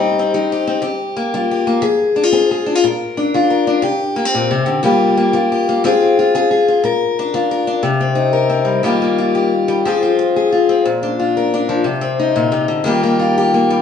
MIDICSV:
0, 0, Header, 1, 3, 480
1, 0, Start_track
1, 0, Key_signature, -3, "minor"
1, 0, Tempo, 333890
1, 2647, Time_signature, 12, 3, 24, 8
1, 19866, End_track
2, 0, Start_track
2, 0, Title_t, "Steel-string acoustic guitar"
2, 0, Program_c, 0, 25
2, 0, Note_on_c, 0, 48, 77
2, 0, Note_on_c, 0, 55, 68
2, 0, Note_on_c, 0, 60, 64
2, 0, Note_on_c, 0, 63, 70
2, 0, Note_on_c, 0, 67, 67
2, 207, Note_off_c, 0, 48, 0
2, 260, Note_off_c, 0, 60, 0
2, 277, Note_on_c, 0, 60, 55
2, 476, Note_off_c, 0, 55, 0
2, 477, Note_off_c, 0, 63, 0
2, 492, Note_on_c, 0, 55, 69
2, 498, Note_on_c, 0, 63, 51
2, 732, Note_off_c, 0, 67, 0
2, 750, Note_on_c, 0, 67, 59
2, 924, Note_off_c, 0, 55, 0
2, 952, Note_off_c, 0, 60, 0
2, 969, Note_on_c, 0, 60, 53
2, 1168, Note_off_c, 0, 67, 0
2, 1176, Note_on_c, 0, 51, 65
2, 1181, Note_off_c, 0, 60, 0
2, 1183, Note_off_c, 0, 63, 0
2, 1185, Note_on_c, 0, 67, 64
2, 1624, Note_off_c, 0, 51, 0
2, 1676, Note_on_c, 0, 58, 56
2, 1925, Note_on_c, 0, 55, 61
2, 1935, Note_on_c, 0, 65, 51
2, 2155, Note_off_c, 0, 67, 0
2, 2176, Note_on_c, 0, 67, 56
2, 2358, Note_off_c, 0, 55, 0
2, 2383, Note_off_c, 0, 58, 0
2, 2401, Note_on_c, 0, 58, 61
2, 2614, Note_on_c, 0, 53, 82
2, 2618, Note_off_c, 0, 65, 0
2, 2621, Note_off_c, 0, 67, 0
2, 2627, Note_on_c, 0, 68, 64
2, 2643, Note_off_c, 0, 58, 0
2, 3062, Note_off_c, 0, 53, 0
2, 3105, Note_on_c, 0, 62, 60
2, 3212, Note_off_c, 0, 62, 0
2, 3212, Note_on_c, 0, 65, 49
2, 3340, Note_off_c, 0, 68, 0
2, 3341, Note_on_c, 0, 60, 71
2, 3357, Note_on_c, 0, 68, 73
2, 3594, Note_off_c, 0, 68, 0
2, 3611, Note_on_c, 0, 68, 60
2, 3783, Note_off_c, 0, 60, 0
2, 3823, Note_off_c, 0, 65, 0
2, 3829, Note_on_c, 0, 62, 58
2, 3959, Note_off_c, 0, 62, 0
2, 3959, Note_on_c, 0, 65, 47
2, 4056, Note_off_c, 0, 68, 0
2, 4080, Note_off_c, 0, 65, 0
2, 4080, Note_on_c, 0, 46, 79
2, 4092, Note_on_c, 0, 70, 66
2, 4511, Note_off_c, 0, 46, 0
2, 4561, Note_on_c, 0, 62, 59
2, 4806, Note_on_c, 0, 53, 66
2, 4816, Note_on_c, 0, 65, 60
2, 5020, Note_off_c, 0, 70, 0
2, 5037, Note_on_c, 0, 70, 59
2, 5233, Note_off_c, 0, 53, 0
2, 5261, Note_off_c, 0, 62, 0
2, 5278, Note_on_c, 0, 62, 59
2, 5487, Note_off_c, 0, 70, 0
2, 5488, Note_off_c, 0, 62, 0
2, 5493, Note_on_c, 0, 48, 77
2, 5496, Note_off_c, 0, 65, 0
2, 5509, Note_on_c, 0, 67, 76
2, 5935, Note_off_c, 0, 48, 0
2, 5983, Note_on_c, 0, 58, 63
2, 6113, Note_off_c, 0, 58, 0
2, 6113, Note_on_c, 0, 60, 54
2, 6247, Note_on_c, 0, 46, 71
2, 6480, Note_off_c, 0, 46, 0
2, 6480, Note_on_c, 0, 48, 71
2, 6693, Note_off_c, 0, 48, 0
2, 6698, Note_on_c, 0, 50, 61
2, 6934, Note_off_c, 0, 50, 0
2, 6940, Note_on_c, 0, 51, 73
2, 6949, Note_off_c, 0, 67, 0
2, 6952, Note_off_c, 0, 60, 0
2, 6953, Note_on_c, 0, 55, 66
2, 6961, Note_on_c, 0, 58, 53
2, 6973, Note_on_c, 0, 65, 57
2, 6985, Note_on_c, 0, 67, 67
2, 7377, Note_off_c, 0, 51, 0
2, 7421, Note_off_c, 0, 58, 0
2, 7438, Note_on_c, 0, 58, 60
2, 7651, Note_off_c, 0, 55, 0
2, 7656, Note_off_c, 0, 65, 0
2, 7666, Note_on_c, 0, 55, 63
2, 7678, Note_on_c, 0, 65, 53
2, 7918, Note_off_c, 0, 67, 0
2, 7935, Note_on_c, 0, 67, 57
2, 8101, Note_off_c, 0, 55, 0
2, 8154, Note_off_c, 0, 58, 0
2, 8177, Note_on_c, 0, 58, 58
2, 8363, Note_off_c, 0, 65, 0
2, 8396, Note_on_c, 0, 53, 80
2, 8400, Note_off_c, 0, 58, 0
2, 8402, Note_off_c, 0, 67, 0
2, 8406, Note_on_c, 0, 60, 71
2, 8412, Note_on_c, 0, 65, 72
2, 8434, Note_on_c, 0, 68, 76
2, 8825, Note_off_c, 0, 53, 0
2, 8880, Note_off_c, 0, 65, 0
2, 8897, Note_on_c, 0, 65, 59
2, 9108, Note_off_c, 0, 60, 0
2, 9118, Note_off_c, 0, 68, 0
2, 9125, Note_on_c, 0, 60, 64
2, 9135, Note_on_c, 0, 68, 76
2, 9338, Note_off_c, 0, 68, 0
2, 9355, Note_on_c, 0, 68, 61
2, 9549, Note_off_c, 0, 60, 0
2, 9591, Note_off_c, 0, 65, 0
2, 9608, Note_on_c, 0, 65, 54
2, 9804, Note_off_c, 0, 68, 0
2, 9810, Note_off_c, 0, 65, 0
2, 9827, Note_on_c, 0, 46, 73
2, 9841, Note_on_c, 0, 70, 68
2, 10261, Note_off_c, 0, 46, 0
2, 10337, Note_on_c, 0, 62, 60
2, 10551, Note_on_c, 0, 53, 66
2, 10562, Note_on_c, 0, 65, 50
2, 10781, Note_off_c, 0, 70, 0
2, 10798, Note_on_c, 0, 70, 62
2, 10984, Note_off_c, 0, 53, 0
2, 11013, Note_off_c, 0, 62, 0
2, 11030, Note_on_c, 0, 62, 58
2, 11242, Note_off_c, 0, 62, 0
2, 11246, Note_off_c, 0, 65, 0
2, 11246, Note_off_c, 0, 70, 0
2, 11253, Note_on_c, 0, 48, 73
2, 11508, Note_on_c, 0, 60, 53
2, 11720, Note_on_c, 0, 63, 56
2, 11973, Note_on_c, 0, 70, 55
2, 12197, Note_off_c, 0, 60, 0
2, 12214, Note_on_c, 0, 60, 52
2, 12433, Note_on_c, 0, 55, 54
2, 12665, Note_off_c, 0, 55, 0
2, 12669, Note_off_c, 0, 63, 0
2, 12675, Note_off_c, 0, 70, 0
2, 12676, Note_off_c, 0, 60, 0
2, 12688, Note_off_c, 0, 48, 0
2, 12694, Note_on_c, 0, 51, 69
2, 12708, Note_on_c, 0, 55, 62
2, 12719, Note_on_c, 0, 58, 46
2, 12724, Note_on_c, 0, 65, 58
2, 12737, Note_on_c, 0, 67, 64
2, 12948, Note_off_c, 0, 58, 0
2, 12965, Note_on_c, 0, 58, 57
2, 13186, Note_off_c, 0, 65, 0
2, 13203, Note_on_c, 0, 65, 59
2, 13422, Note_off_c, 0, 67, 0
2, 13440, Note_on_c, 0, 67, 60
2, 13682, Note_off_c, 0, 58, 0
2, 13901, Note_off_c, 0, 55, 0
2, 13918, Note_on_c, 0, 55, 61
2, 14119, Note_off_c, 0, 51, 0
2, 14130, Note_off_c, 0, 55, 0
2, 14133, Note_off_c, 0, 65, 0
2, 14160, Note_off_c, 0, 67, 0
2, 14166, Note_on_c, 0, 53, 73
2, 14181, Note_on_c, 0, 60, 59
2, 14185, Note_on_c, 0, 65, 60
2, 14200, Note_on_c, 0, 68, 59
2, 14396, Note_off_c, 0, 65, 0
2, 14414, Note_on_c, 0, 65, 59
2, 14629, Note_off_c, 0, 68, 0
2, 14898, Note_on_c, 0, 68, 56
2, 15112, Note_off_c, 0, 65, 0
2, 15129, Note_on_c, 0, 65, 59
2, 15353, Note_off_c, 0, 60, 0
2, 15371, Note_on_c, 0, 60, 57
2, 15578, Note_off_c, 0, 60, 0
2, 15578, Note_off_c, 0, 65, 0
2, 15583, Note_off_c, 0, 68, 0
2, 15605, Note_on_c, 0, 46, 66
2, 15853, Note_on_c, 0, 62, 53
2, 16094, Note_on_c, 0, 65, 51
2, 16344, Note_on_c, 0, 70, 61
2, 16571, Note_off_c, 0, 62, 0
2, 16586, Note_on_c, 0, 62, 62
2, 16787, Note_off_c, 0, 53, 0
2, 16804, Note_on_c, 0, 53, 60
2, 17020, Note_off_c, 0, 46, 0
2, 17024, Note_off_c, 0, 65, 0
2, 17024, Note_on_c, 0, 48, 71
2, 17029, Note_off_c, 0, 62, 0
2, 17029, Note_off_c, 0, 70, 0
2, 17047, Note_off_c, 0, 53, 0
2, 17269, Note_on_c, 0, 60, 59
2, 17531, Note_on_c, 0, 63, 57
2, 17764, Note_on_c, 0, 46, 62
2, 17978, Note_off_c, 0, 48, 0
2, 17995, Note_on_c, 0, 48, 64
2, 18009, Note_off_c, 0, 46, 0
2, 18226, Note_off_c, 0, 48, 0
2, 18231, Note_on_c, 0, 50, 60
2, 18452, Note_off_c, 0, 50, 0
2, 18455, Note_off_c, 0, 60, 0
2, 18458, Note_on_c, 0, 51, 75
2, 18466, Note_off_c, 0, 63, 0
2, 18475, Note_on_c, 0, 55, 55
2, 18489, Note_on_c, 0, 58, 62
2, 18498, Note_on_c, 0, 65, 44
2, 18510, Note_on_c, 0, 67, 64
2, 18720, Note_off_c, 0, 58, 0
2, 18737, Note_on_c, 0, 58, 61
2, 18951, Note_off_c, 0, 65, 0
2, 18968, Note_on_c, 0, 65, 54
2, 19215, Note_off_c, 0, 67, 0
2, 19232, Note_on_c, 0, 67, 62
2, 19450, Note_off_c, 0, 58, 0
2, 19467, Note_on_c, 0, 58, 53
2, 19684, Note_off_c, 0, 55, 0
2, 19701, Note_on_c, 0, 55, 55
2, 19866, Note_off_c, 0, 51, 0
2, 19866, Note_off_c, 0, 55, 0
2, 19866, Note_off_c, 0, 58, 0
2, 19866, Note_off_c, 0, 65, 0
2, 19866, Note_off_c, 0, 67, 0
2, 19866, End_track
3, 0, Start_track
3, 0, Title_t, "Muted steel-string acoustic guitar strokes"
3, 14646, Note_on_c, 9, 29, 60
3, 14790, Note_off_c, 9, 29, 0
3, 19866, End_track
0, 0, End_of_file